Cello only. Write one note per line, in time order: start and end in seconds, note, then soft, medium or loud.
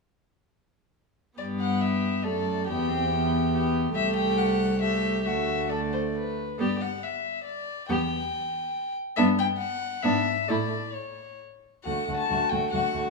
1.40 2.22 G2 soft
2.26 2.72 F#2 soft
2.71 3.95 E2 soft
3.96 5.29 C2 soft
5.27 6.39 D2 soft
6.59 6.94 G2 soft
7.90 8.24 E2 soft
9.18 9.51 G2 medium
10.04 10.40 G#2 medium
10.50 10.86 A2 soft
11.87 11.95 D2 soft
12.09 12.17 D2 soft
12.31 12.39 D2 soft
12.52 12.60 D2 soft
12.73 12.81 D2 soft
12.95 13.03 D2 soft